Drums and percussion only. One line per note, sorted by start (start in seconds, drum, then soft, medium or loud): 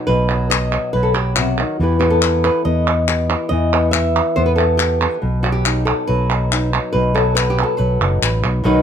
0.51 clap medium
1.36 clap medium
2.22 clap medium
3.08 clap medium
3.30 clap soft
3.94 clap medium
4.16 clap soft
4.80 clap medium
5.66 clap medium
6.52 clap medium
7.37 clap medium
8.23 clap medium